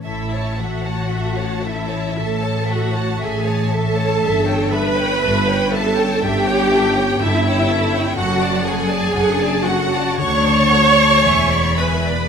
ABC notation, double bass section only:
X:1
M:4/4
L:1/8
Q:1/4=59
K:A
V:1 name="Double bass section" clef=bass
A,,,2 A,,,2 A,,,2 A,,,2 | =G,,,2 G,,,2 G,,,2 G,,,2 | F,,,2 F,,,2 D,,2 E,,,2 |]